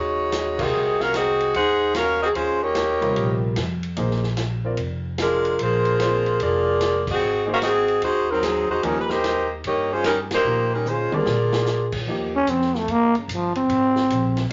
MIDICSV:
0, 0, Header, 1, 7, 480
1, 0, Start_track
1, 0, Tempo, 405132
1, 864, Time_signature, 4, 2, 24, 8
1, 17213, End_track
2, 0, Start_track
2, 0, Title_t, "Saxophone section"
2, 0, Program_c, 0, 65
2, 0, Note_on_c, 0, 56, 72
2, 0, Note_on_c, 0, 63, 75
2, 0, Note_on_c, 0, 66, 76
2, 0, Note_on_c, 0, 73, 82
2, 720, Note_off_c, 0, 66, 0
2, 722, Note_off_c, 0, 56, 0
2, 723, Note_off_c, 0, 73, 0
2, 724, Note_off_c, 0, 63, 0
2, 735, Note_on_c, 0, 60, 78
2, 741, Note_on_c, 0, 68, 81
2, 741, Note_on_c, 0, 75, 90
2, 745, Note_on_c, 0, 66, 78
2, 1194, Note_off_c, 0, 66, 0
2, 1197, Note_off_c, 0, 60, 0
2, 1200, Note_off_c, 0, 68, 0
2, 1200, Note_off_c, 0, 75, 0
2, 1204, Note_on_c, 0, 70, 81
2, 1204, Note_on_c, 0, 77, 91
2, 1208, Note_on_c, 0, 66, 78
2, 1212, Note_on_c, 0, 61, 81
2, 1357, Note_off_c, 0, 70, 0
2, 1357, Note_off_c, 0, 77, 0
2, 1359, Note_off_c, 0, 66, 0
2, 1361, Note_off_c, 0, 61, 0
2, 1374, Note_on_c, 0, 66, 84
2, 1374, Note_on_c, 0, 68, 88
2, 1375, Note_on_c, 0, 60, 88
2, 1379, Note_on_c, 0, 75, 95
2, 1806, Note_off_c, 0, 68, 0
2, 1807, Note_off_c, 0, 60, 0
2, 1807, Note_off_c, 0, 66, 0
2, 1809, Note_off_c, 0, 75, 0
2, 1853, Note_on_c, 0, 63, 80
2, 1854, Note_on_c, 0, 72, 82
2, 1855, Note_on_c, 0, 68, 91
2, 1857, Note_on_c, 0, 78, 92
2, 2286, Note_off_c, 0, 63, 0
2, 2287, Note_off_c, 0, 68, 0
2, 2287, Note_off_c, 0, 72, 0
2, 2288, Note_off_c, 0, 78, 0
2, 2317, Note_on_c, 0, 66, 83
2, 2319, Note_on_c, 0, 61, 84
2, 2319, Note_on_c, 0, 77, 101
2, 2322, Note_on_c, 0, 70, 88
2, 2603, Note_off_c, 0, 66, 0
2, 2604, Note_off_c, 0, 61, 0
2, 2604, Note_off_c, 0, 77, 0
2, 2606, Note_off_c, 0, 70, 0
2, 2643, Note_on_c, 0, 75, 87
2, 2648, Note_on_c, 0, 60, 73
2, 2650, Note_on_c, 0, 66, 72
2, 2654, Note_on_c, 0, 68, 77
2, 2712, Note_off_c, 0, 75, 0
2, 2716, Note_off_c, 0, 60, 0
2, 2718, Note_off_c, 0, 66, 0
2, 2721, Note_off_c, 0, 68, 0
2, 2800, Note_on_c, 0, 61, 75
2, 2801, Note_on_c, 0, 72, 89
2, 2803, Note_on_c, 0, 65, 79
2, 2807, Note_on_c, 0, 56, 76
2, 3085, Note_off_c, 0, 61, 0
2, 3085, Note_off_c, 0, 72, 0
2, 3087, Note_off_c, 0, 65, 0
2, 3089, Note_off_c, 0, 56, 0
2, 3121, Note_on_c, 0, 58, 80
2, 3123, Note_on_c, 0, 63, 83
2, 3126, Note_on_c, 0, 67, 78
2, 3131, Note_on_c, 0, 73, 90
2, 4070, Note_off_c, 0, 58, 0
2, 4071, Note_off_c, 0, 63, 0
2, 4073, Note_off_c, 0, 67, 0
2, 4075, Note_off_c, 0, 73, 0
2, 6182, Note_on_c, 0, 62, 72
2, 6183, Note_on_c, 0, 56, 76
2, 6184, Note_on_c, 0, 65, 69
2, 6186, Note_on_c, 0, 70, 83
2, 6612, Note_off_c, 0, 56, 0
2, 6612, Note_off_c, 0, 62, 0
2, 6613, Note_off_c, 0, 65, 0
2, 6614, Note_off_c, 0, 70, 0
2, 6664, Note_on_c, 0, 68, 81
2, 6670, Note_on_c, 0, 65, 80
2, 6671, Note_on_c, 0, 72, 87
2, 6672, Note_on_c, 0, 58, 78
2, 7602, Note_off_c, 0, 58, 0
2, 7602, Note_off_c, 0, 68, 0
2, 7603, Note_off_c, 0, 65, 0
2, 7609, Note_off_c, 0, 72, 0
2, 7616, Note_on_c, 0, 58, 80
2, 7617, Note_on_c, 0, 65, 75
2, 7617, Note_on_c, 0, 68, 81
2, 7619, Note_on_c, 0, 74, 92
2, 8349, Note_off_c, 0, 58, 0
2, 8349, Note_off_c, 0, 65, 0
2, 8349, Note_off_c, 0, 68, 0
2, 8350, Note_off_c, 0, 74, 0
2, 8422, Note_on_c, 0, 60, 81
2, 8427, Note_on_c, 0, 66, 90
2, 8427, Note_on_c, 0, 75, 99
2, 8433, Note_on_c, 0, 68, 80
2, 8850, Note_off_c, 0, 60, 0
2, 8852, Note_off_c, 0, 66, 0
2, 8852, Note_off_c, 0, 75, 0
2, 8856, Note_off_c, 0, 68, 0
2, 8917, Note_on_c, 0, 61, 79
2, 8918, Note_on_c, 0, 70, 85
2, 8920, Note_on_c, 0, 77, 101
2, 8922, Note_on_c, 0, 66, 81
2, 8979, Note_off_c, 0, 61, 0
2, 8980, Note_off_c, 0, 70, 0
2, 8981, Note_off_c, 0, 77, 0
2, 8983, Note_off_c, 0, 66, 0
2, 9051, Note_on_c, 0, 75, 101
2, 9057, Note_on_c, 0, 60, 90
2, 9057, Note_on_c, 0, 66, 89
2, 9061, Note_on_c, 0, 68, 90
2, 9487, Note_off_c, 0, 75, 0
2, 9490, Note_off_c, 0, 60, 0
2, 9490, Note_off_c, 0, 66, 0
2, 9492, Note_off_c, 0, 68, 0
2, 9531, Note_on_c, 0, 72, 90
2, 9533, Note_on_c, 0, 56, 82
2, 9533, Note_on_c, 0, 63, 76
2, 9537, Note_on_c, 0, 66, 77
2, 9813, Note_off_c, 0, 63, 0
2, 9813, Note_off_c, 0, 72, 0
2, 9814, Note_off_c, 0, 56, 0
2, 9815, Note_off_c, 0, 66, 0
2, 9851, Note_on_c, 0, 63, 74
2, 9852, Note_on_c, 0, 70, 86
2, 9861, Note_on_c, 0, 54, 73
2, 9861, Note_on_c, 0, 60, 78
2, 9994, Note_off_c, 0, 60, 0
2, 9995, Note_off_c, 0, 54, 0
2, 9999, Note_off_c, 0, 63, 0
2, 10003, Note_off_c, 0, 70, 0
2, 10007, Note_on_c, 0, 68, 86
2, 10008, Note_on_c, 0, 60, 74
2, 10009, Note_on_c, 0, 54, 74
2, 10013, Note_on_c, 0, 63, 79
2, 10307, Note_off_c, 0, 63, 0
2, 10312, Note_off_c, 0, 60, 0
2, 10312, Note_off_c, 0, 68, 0
2, 10313, Note_off_c, 0, 54, 0
2, 10315, Note_on_c, 0, 66, 76
2, 10317, Note_on_c, 0, 72, 84
2, 10322, Note_on_c, 0, 63, 73
2, 10327, Note_on_c, 0, 56, 72
2, 10453, Note_off_c, 0, 63, 0
2, 10463, Note_off_c, 0, 66, 0
2, 10464, Note_off_c, 0, 72, 0
2, 10465, Note_on_c, 0, 70, 86
2, 10468, Note_on_c, 0, 63, 77
2, 10470, Note_off_c, 0, 56, 0
2, 10470, Note_on_c, 0, 55, 73
2, 10470, Note_on_c, 0, 61, 75
2, 10672, Note_off_c, 0, 70, 0
2, 10673, Note_off_c, 0, 63, 0
2, 10674, Note_off_c, 0, 61, 0
2, 10674, Note_on_c, 0, 71, 72
2, 10675, Note_off_c, 0, 55, 0
2, 10782, Note_off_c, 0, 71, 0
2, 10786, Note_on_c, 0, 72, 96
2, 10788, Note_on_c, 0, 67, 85
2, 10789, Note_on_c, 0, 58, 82
2, 10795, Note_on_c, 0, 63, 83
2, 11264, Note_off_c, 0, 72, 0
2, 11265, Note_off_c, 0, 58, 0
2, 11265, Note_off_c, 0, 67, 0
2, 11268, Note_off_c, 0, 63, 0
2, 11453, Note_on_c, 0, 67, 72
2, 11454, Note_on_c, 0, 63, 75
2, 11459, Note_on_c, 0, 58, 78
2, 11460, Note_on_c, 0, 73, 86
2, 11733, Note_off_c, 0, 63, 0
2, 11733, Note_off_c, 0, 67, 0
2, 11736, Note_off_c, 0, 58, 0
2, 11737, Note_off_c, 0, 73, 0
2, 11764, Note_on_c, 0, 72, 91
2, 11767, Note_on_c, 0, 61, 76
2, 11767, Note_on_c, 0, 65, 77
2, 11771, Note_on_c, 0, 56, 75
2, 11905, Note_off_c, 0, 61, 0
2, 11918, Note_off_c, 0, 72, 0
2, 11918, Note_on_c, 0, 55, 74
2, 11919, Note_on_c, 0, 61, 69
2, 11920, Note_off_c, 0, 65, 0
2, 11921, Note_on_c, 0, 63, 72
2, 11922, Note_off_c, 0, 56, 0
2, 11922, Note_on_c, 0, 70, 80
2, 12057, Note_off_c, 0, 55, 0
2, 12058, Note_off_c, 0, 61, 0
2, 12059, Note_off_c, 0, 63, 0
2, 12060, Note_off_c, 0, 70, 0
2, 12247, Note_on_c, 0, 63, 80
2, 12249, Note_on_c, 0, 72, 94
2, 12253, Note_on_c, 0, 67, 72
2, 12254, Note_on_c, 0, 58, 80
2, 12681, Note_off_c, 0, 63, 0
2, 12682, Note_off_c, 0, 72, 0
2, 12684, Note_off_c, 0, 67, 0
2, 12685, Note_off_c, 0, 58, 0
2, 12723, Note_on_c, 0, 63, 69
2, 12723, Note_on_c, 0, 70, 81
2, 12728, Note_on_c, 0, 55, 72
2, 12735, Note_on_c, 0, 61, 72
2, 12878, Note_off_c, 0, 63, 0
2, 12878, Note_off_c, 0, 70, 0
2, 12880, Note_off_c, 0, 55, 0
2, 12881, Note_off_c, 0, 61, 0
2, 12895, Note_on_c, 0, 61, 73
2, 12897, Note_on_c, 0, 65, 74
2, 12897, Note_on_c, 0, 72, 85
2, 12900, Note_on_c, 0, 56, 76
2, 13184, Note_off_c, 0, 65, 0
2, 13194, Note_off_c, 0, 61, 0
2, 13196, Note_off_c, 0, 72, 0
2, 13197, Note_off_c, 0, 56, 0
2, 13198, Note_on_c, 0, 65, 71
2, 13198, Note_on_c, 0, 68, 70
2, 13201, Note_on_c, 0, 74, 84
2, 13202, Note_on_c, 0, 58, 68
2, 14148, Note_off_c, 0, 65, 0
2, 14148, Note_off_c, 0, 68, 0
2, 14150, Note_off_c, 0, 58, 0
2, 14150, Note_off_c, 0, 74, 0
2, 17213, End_track
3, 0, Start_track
3, 0, Title_t, "Grand piano"
3, 0, Program_c, 1, 0
3, 684, Note_on_c, 1, 48, 64
3, 701, Note_on_c, 1, 77, 62
3, 702, Note_on_c, 1, 70, 58
3, 712, Note_on_c, 1, 72, 73
3, 1304, Note_off_c, 1, 48, 0
3, 1312, Note_off_c, 1, 77, 0
3, 1313, Note_off_c, 1, 70, 0
3, 1318, Note_off_c, 1, 72, 0
3, 3564, Note_on_c, 1, 55, 64
3, 3573, Note_on_c, 1, 48, 60
3, 3585, Note_on_c, 1, 65, 62
3, 3587, Note_on_c, 1, 70, 70
3, 4185, Note_off_c, 1, 55, 0
3, 4189, Note_off_c, 1, 48, 0
3, 4195, Note_off_c, 1, 65, 0
3, 4196, Note_off_c, 1, 70, 0
3, 4700, Note_on_c, 1, 58, 62
3, 4707, Note_on_c, 1, 63, 54
3, 4717, Note_on_c, 1, 68, 53
3, 4722, Note_on_c, 1, 72, 65
3, 4985, Note_off_c, 1, 58, 0
3, 4989, Note_off_c, 1, 63, 0
3, 4994, Note_off_c, 1, 68, 0
3, 4997, Note_off_c, 1, 72, 0
3, 5503, Note_on_c, 1, 60, 56
3, 5509, Note_on_c, 1, 65, 53
3, 5513, Note_on_c, 1, 70, 53
3, 5523, Note_on_c, 1, 74, 64
3, 5651, Note_off_c, 1, 60, 0
3, 5654, Note_off_c, 1, 65, 0
3, 5656, Note_off_c, 1, 70, 0
3, 5661, Note_off_c, 1, 74, 0
3, 7110, Note_on_c, 1, 60, 65
3, 7111, Note_on_c, 1, 65, 58
3, 7125, Note_on_c, 1, 70, 57
3, 7135, Note_on_c, 1, 74, 69
3, 7391, Note_off_c, 1, 60, 0
3, 7392, Note_off_c, 1, 65, 0
3, 7399, Note_off_c, 1, 70, 0
3, 7404, Note_off_c, 1, 74, 0
3, 8845, Note_on_c, 1, 58, 64
3, 8847, Note_on_c, 1, 63, 60
3, 8853, Note_on_c, 1, 68, 60
3, 8869, Note_on_c, 1, 72, 71
3, 9003, Note_off_c, 1, 58, 0
3, 9004, Note_off_c, 1, 63, 0
3, 9007, Note_off_c, 1, 68, 0
3, 9015, Note_off_c, 1, 72, 0
3, 10463, Note_on_c, 1, 53, 67
3, 10471, Note_on_c, 1, 58, 60
3, 10477, Note_on_c, 1, 63, 58
3, 10493, Note_on_c, 1, 67, 70
3, 10748, Note_off_c, 1, 53, 0
3, 10752, Note_off_c, 1, 58, 0
3, 10755, Note_off_c, 1, 63, 0
3, 10763, Note_off_c, 1, 67, 0
3, 12387, Note_on_c, 1, 53, 62
3, 12391, Note_on_c, 1, 58, 57
3, 12400, Note_on_c, 1, 63, 59
3, 12404, Note_on_c, 1, 67, 69
3, 12669, Note_off_c, 1, 53, 0
3, 12671, Note_off_c, 1, 58, 0
3, 12676, Note_off_c, 1, 63, 0
3, 12678, Note_off_c, 1, 67, 0
3, 13176, Note_on_c, 1, 50, 66
3, 13188, Note_on_c, 1, 55, 60
3, 13190, Note_on_c, 1, 60, 59
3, 13201, Note_on_c, 1, 62, 75
3, 13327, Note_off_c, 1, 50, 0
3, 13333, Note_off_c, 1, 55, 0
3, 13334, Note_off_c, 1, 60, 0
3, 13340, Note_off_c, 1, 62, 0
3, 14303, Note_on_c, 1, 53, 58
3, 14314, Note_on_c, 1, 58, 49
3, 14320, Note_on_c, 1, 63, 51
3, 14333, Note_on_c, 1, 67, 65
3, 14586, Note_off_c, 1, 53, 0
3, 14592, Note_off_c, 1, 58, 0
3, 14595, Note_off_c, 1, 63, 0
3, 14601, Note_off_c, 1, 67, 0
3, 17177, Note_on_c, 1, 58, 55
3, 17213, Note_off_c, 1, 58, 0
3, 17213, End_track
4, 0, Start_track
4, 0, Title_t, "Trombone"
4, 0, Program_c, 2, 57
4, 14641, Note_on_c, 2, 61, 88
4, 14805, Note_on_c, 2, 60, 78
4, 14822, Note_off_c, 2, 61, 0
4, 15129, Note_on_c, 2, 57, 80
4, 15147, Note_off_c, 2, 60, 0
4, 15291, Note_on_c, 2, 58, 89
4, 15309, Note_off_c, 2, 57, 0
4, 15592, Note_off_c, 2, 58, 0
4, 15614, Note_on_c, 2, 49, 47
4, 15799, Note_on_c, 2, 53, 73
4, 15804, Note_off_c, 2, 49, 0
4, 16062, Note_off_c, 2, 53, 0
4, 16069, Note_on_c, 2, 60, 90
4, 17142, Note_off_c, 2, 60, 0
4, 17213, End_track
5, 0, Start_track
5, 0, Title_t, "Upright bass"
5, 0, Program_c, 3, 32
5, 0, Note_on_c, 3, 39, 92
5, 814, Note_off_c, 3, 39, 0
5, 870, Note_on_c, 3, 36, 85
5, 1780, Note_off_c, 3, 36, 0
5, 1827, Note_on_c, 3, 39, 92
5, 2739, Note_off_c, 3, 39, 0
5, 2783, Note_on_c, 3, 39, 87
5, 3697, Note_off_c, 3, 39, 0
5, 3754, Note_on_c, 3, 34, 92
5, 4197, Note_off_c, 3, 34, 0
5, 4232, Note_on_c, 3, 41, 77
5, 4675, Note_off_c, 3, 41, 0
5, 4715, Note_on_c, 3, 34, 92
5, 5623, Note_off_c, 3, 34, 0
5, 5660, Note_on_c, 3, 29, 87
5, 6576, Note_off_c, 3, 29, 0
5, 6630, Note_on_c, 3, 34, 82
5, 7542, Note_off_c, 3, 34, 0
5, 7603, Note_on_c, 3, 29, 91
5, 8508, Note_off_c, 3, 29, 0
5, 8550, Note_on_c, 3, 32, 81
5, 9462, Note_off_c, 3, 32, 0
5, 9494, Note_on_c, 3, 39, 93
5, 10247, Note_off_c, 3, 39, 0
5, 10296, Note_on_c, 3, 40, 70
5, 10453, Note_off_c, 3, 40, 0
5, 10476, Note_on_c, 3, 39, 85
5, 11384, Note_off_c, 3, 39, 0
5, 11432, Note_on_c, 3, 43, 91
5, 12342, Note_off_c, 3, 43, 0
5, 12369, Note_on_c, 3, 46, 88
5, 13124, Note_off_c, 3, 46, 0
5, 13339, Note_on_c, 3, 46, 91
5, 14254, Note_off_c, 3, 46, 0
5, 14296, Note_on_c, 3, 39, 81
5, 14763, Note_off_c, 3, 39, 0
5, 14770, Note_on_c, 3, 41, 94
5, 15242, Note_off_c, 3, 41, 0
5, 15251, Note_on_c, 3, 43, 85
5, 15723, Note_off_c, 3, 43, 0
5, 15731, Note_on_c, 3, 31, 89
5, 16203, Note_off_c, 3, 31, 0
5, 16222, Note_on_c, 3, 32, 85
5, 16689, Note_off_c, 3, 32, 0
5, 16706, Note_on_c, 3, 34, 94
5, 17171, Note_off_c, 3, 34, 0
5, 17213, End_track
6, 0, Start_track
6, 0, Title_t, "Muted upright bass strokes"
6, 13172, Note_on_c, 9, 29, 41
6, 13290, Note_off_c, 9, 29, 0
6, 17213, End_track
7, 0, Start_track
7, 0, Title_t, "Drums"
7, 382, Note_on_c, 9, 38, 72
7, 382, Note_on_c, 9, 44, 65
7, 382, Note_on_c, 9, 51, 63
7, 500, Note_off_c, 9, 38, 0
7, 500, Note_off_c, 9, 44, 0
7, 500, Note_off_c, 9, 51, 0
7, 698, Note_on_c, 9, 49, 76
7, 699, Note_on_c, 9, 36, 81
7, 816, Note_off_c, 9, 49, 0
7, 817, Note_off_c, 9, 36, 0
7, 1186, Note_on_c, 9, 38, 45
7, 1305, Note_off_c, 9, 38, 0
7, 1349, Note_on_c, 9, 38, 63
7, 1349, Note_on_c, 9, 44, 59
7, 1349, Note_on_c, 9, 51, 65
7, 1468, Note_off_c, 9, 38, 0
7, 1468, Note_off_c, 9, 44, 0
7, 1468, Note_off_c, 9, 51, 0
7, 1664, Note_on_c, 9, 51, 43
7, 1783, Note_off_c, 9, 51, 0
7, 1829, Note_on_c, 9, 51, 61
7, 1947, Note_off_c, 9, 51, 0
7, 2305, Note_on_c, 9, 38, 72
7, 2305, Note_on_c, 9, 44, 56
7, 2305, Note_on_c, 9, 51, 74
7, 2424, Note_off_c, 9, 38, 0
7, 2424, Note_off_c, 9, 44, 0
7, 2424, Note_off_c, 9, 51, 0
7, 2786, Note_on_c, 9, 51, 61
7, 2905, Note_off_c, 9, 51, 0
7, 3257, Note_on_c, 9, 38, 66
7, 3257, Note_on_c, 9, 44, 57
7, 3257, Note_on_c, 9, 51, 70
7, 3376, Note_off_c, 9, 38, 0
7, 3376, Note_off_c, 9, 44, 0
7, 3376, Note_off_c, 9, 51, 0
7, 3578, Note_on_c, 9, 51, 48
7, 3697, Note_off_c, 9, 51, 0
7, 3746, Note_on_c, 9, 51, 59
7, 3864, Note_off_c, 9, 51, 0
7, 4219, Note_on_c, 9, 38, 69
7, 4219, Note_on_c, 9, 44, 65
7, 4219, Note_on_c, 9, 51, 70
7, 4338, Note_off_c, 9, 38, 0
7, 4338, Note_off_c, 9, 44, 0
7, 4338, Note_off_c, 9, 51, 0
7, 4537, Note_on_c, 9, 51, 48
7, 4656, Note_off_c, 9, 51, 0
7, 4699, Note_on_c, 9, 51, 65
7, 4817, Note_off_c, 9, 51, 0
7, 4865, Note_on_c, 9, 38, 30
7, 4984, Note_off_c, 9, 38, 0
7, 5017, Note_on_c, 9, 38, 43
7, 5136, Note_off_c, 9, 38, 0
7, 5175, Note_on_c, 9, 38, 61
7, 5175, Note_on_c, 9, 44, 52
7, 5175, Note_on_c, 9, 51, 61
7, 5294, Note_off_c, 9, 38, 0
7, 5294, Note_off_c, 9, 44, 0
7, 5294, Note_off_c, 9, 51, 0
7, 5653, Note_on_c, 9, 51, 62
7, 5771, Note_off_c, 9, 51, 0
7, 6139, Note_on_c, 9, 38, 72
7, 6139, Note_on_c, 9, 44, 62
7, 6139, Note_on_c, 9, 51, 67
7, 6257, Note_off_c, 9, 38, 0
7, 6257, Note_off_c, 9, 44, 0
7, 6257, Note_off_c, 9, 51, 0
7, 6455, Note_on_c, 9, 51, 48
7, 6573, Note_off_c, 9, 51, 0
7, 6623, Note_on_c, 9, 51, 67
7, 6742, Note_off_c, 9, 51, 0
7, 6932, Note_on_c, 9, 51, 49
7, 7051, Note_off_c, 9, 51, 0
7, 7104, Note_on_c, 9, 38, 66
7, 7104, Note_on_c, 9, 44, 50
7, 7104, Note_on_c, 9, 51, 63
7, 7223, Note_off_c, 9, 38, 0
7, 7223, Note_off_c, 9, 44, 0
7, 7223, Note_off_c, 9, 51, 0
7, 7419, Note_on_c, 9, 51, 42
7, 7537, Note_off_c, 9, 51, 0
7, 7580, Note_on_c, 9, 51, 61
7, 7699, Note_off_c, 9, 51, 0
7, 8064, Note_on_c, 9, 38, 71
7, 8064, Note_on_c, 9, 44, 58
7, 8064, Note_on_c, 9, 51, 71
7, 8183, Note_off_c, 9, 38, 0
7, 8183, Note_off_c, 9, 44, 0
7, 8183, Note_off_c, 9, 51, 0
7, 8380, Note_on_c, 9, 36, 89
7, 8381, Note_on_c, 9, 49, 75
7, 8499, Note_off_c, 9, 36, 0
7, 8500, Note_off_c, 9, 49, 0
7, 9025, Note_on_c, 9, 38, 65
7, 9025, Note_on_c, 9, 44, 59
7, 9025, Note_on_c, 9, 51, 68
7, 9144, Note_off_c, 9, 38, 0
7, 9144, Note_off_c, 9, 44, 0
7, 9144, Note_off_c, 9, 51, 0
7, 9338, Note_on_c, 9, 51, 42
7, 9457, Note_off_c, 9, 51, 0
7, 9500, Note_on_c, 9, 51, 59
7, 9618, Note_off_c, 9, 51, 0
7, 9986, Note_on_c, 9, 38, 71
7, 9986, Note_on_c, 9, 44, 59
7, 9986, Note_on_c, 9, 51, 72
7, 10104, Note_off_c, 9, 38, 0
7, 10104, Note_off_c, 9, 44, 0
7, 10104, Note_off_c, 9, 51, 0
7, 10464, Note_on_c, 9, 51, 62
7, 10583, Note_off_c, 9, 51, 0
7, 10776, Note_on_c, 9, 38, 59
7, 10895, Note_off_c, 9, 38, 0
7, 10947, Note_on_c, 9, 38, 70
7, 10947, Note_on_c, 9, 44, 47
7, 10947, Note_on_c, 9, 51, 65
7, 11066, Note_off_c, 9, 38, 0
7, 11066, Note_off_c, 9, 44, 0
7, 11066, Note_off_c, 9, 51, 0
7, 11421, Note_on_c, 9, 51, 66
7, 11540, Note_off_c, 9, 51, 0
7, 11897, Note_on_c, 9, 38, 73
7, 11897, Note_on_c, 9, 44, 50
7, 11897, Note_on_c, 9, 51, 73
7, 12016, Note_off_c, 9, 38, 0
7, 12016, Note_off_c, 9, 44, 0
7, 12016, Note_off_c, 9, 51, 0
7, 12212, Note_on_c, 9, 38, 86
7, 12212, Note_on_c, 9, 51, 68
7, 12331, Note_off_c, 9, 38, 0
7, 12331, Note_off_c, 9, 51, 0
7, 12863, Note_on_c, 9, 44, 51
7, 12863, Note_on_c, 9, 47, 47
7, 12982, Note_off_c, 9, 44, 0
7, 12982, Note_off_c, 9, 47, 0
7, 13176, Note_on_c, 9, 47, 73
7, 13294, Note_off_c, 9, 47, 0
7, 13335, Note_on_c, 9, 38, 67
7, 13454, Note_off_c, 9, 38, 0
7, 13655, Note_on_c, 9, 38, 90
7, 13773, Note_off_c, 9, 38, 0
7, 13813, Note_on_c, 9, 38, 57
7, 13813, Note_on_c, 9, 44, 53
7, 13932, Note_off_c, 9, 38, 0
7, 13932, Note_off_c, 9, 44, 0
7, 14126, Note_on_c, 9, 49, 72
7, 14130, Note_on_c, 9, 36, 73
7, 14244, Note_off_c, 9, 49, 0
7, 14248, Note_off_c, 9, 36, 0
7, 14776, Note_on_c, 9, 44, 52
7, 14776, Note_on_c, 9, 51, 63
7, 14894, Note_off_c, 9, 44, 0
7, 14894, Note_off_c, 9, 51, 0
7, 14945, Note_on_c, 9, 38, 30
7, 15064, Note_off_c, 9, 38, 0
7, 15103, Note_on_c, 9, 38, 42
7, 15221, Note_off_c, 9, 38, 0
7, 15261, Note_on_c, 9, 51, 58
7, 15379, Note_off_c, 9, 51, 0
7, 15579, Note_on_c, 9, 51, 47
7, 15697, Note_off_c, 9, 51, 0
7, 15747, Note_on_c, 9, 44, 70
7, 15747, Note_on_c, 9, 51, 72
7, 15866, Note_off_c, 9, 44, 0
7, 15866, Note_off_c, 9, 51, 0
7, 16060, Note_on_c, 9, 51, 47
7, 16178, Note_off_c, 9, 51, 0
7, 16226, Note_on_c, 9, 51, 65
7, 16345, Note_off_c, 9, 51, 0
7, 16538, Note_on_c, 9, 38, 54
7, 16656, Note_off_c, 9, 38, 0
7, 16710, Note_on_c, 9, 44, 58
7, 16710, Note_on_c, 9, 51, 60
7, 16829, Note_off_c, 9, 44, 0
7, 16829, Note_off_c, 9, 51, 0
7, 17023, Note_on_c, 9, 38, 42
7, 17023, Note_on_c, 9, 51, 46
7, 17141, Note_off_c, 9, 38, 0
7, 17141, Note_off_c, 9, 51, 0
7, 17213, End_track
0, 0, End_of_file